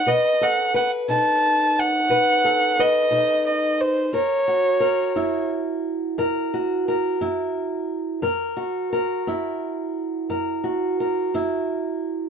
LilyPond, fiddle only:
\new Staff \with { instrumentName = "Fiddle" } { \time 12/8 \key fis \mixolydian \tempo 4. = 59 dis''8 fis''8 fis''8 a''4 fis''4. dis''4 dis''8 bis'8 | cis''2 r1 | r1. | }